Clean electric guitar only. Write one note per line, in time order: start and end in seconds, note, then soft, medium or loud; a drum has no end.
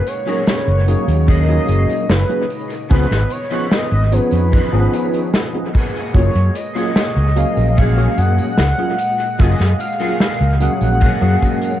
0.26 0.77 C#4 medium
0.26 0.78 D#4 medium
0.26 0.78 G#4 medium
0.26 0.78 A#4 medium
1.27 1.99 C#4 medium
1.27 1.99 D#4 medium
1.27 2.00 G#4 medium
1.27 2.00 A#4 loud
2.70 muted clean electric guitar stroke medium
2.90 3.21 C#4 loud
2.90 3.21 D#4 loud
2.90 3.21 F4 loud
2.90 3.21 B4 loud
3.50 4.02 C#4 medium
3.50 4.02 D#4 medium
3.50 4.02 F4 medium
3.50 4.03 B4 medium
4.52 5.23 C#4 medium
4.52 5.24 D#4 medium
4.52 5.24 F4 medium
4.52 5.24 B4 medium
5.73 6.55 A#3 medium
5.73 6.55 F4 medium
5.73 6.56 F#4 medium
5.73 6.56 G#4 loud
6.75 7.26 A#3 medium
6.75 7.26 F4 medium
6.75 7.27 F#4 medium
6.75 7.27 G#4 loud
7.76 8.48 A#3 medium
7.76 8.48 F4 medium
7.76 8.48 F#4 medium
7.76 8.49 G#4 loud
9.18 muted clean electric guitar stroke medium
9.39 9.69 A#3 loud
9.39 9.70 F4 loud
9.39 9.70 F#4 loud
9.39 9.70 G#4 loud
9.99 10.50 A#3 medium
9.99 10.51 F4 medium
9.99 10.51 F#4 medium
9.99 10.51 G#4 loud
11.00 11.72 A#3 medium
11.00 11.72 F4 medium
11.00 11.73 F#4 medium
11.00 11.73 G#4 loud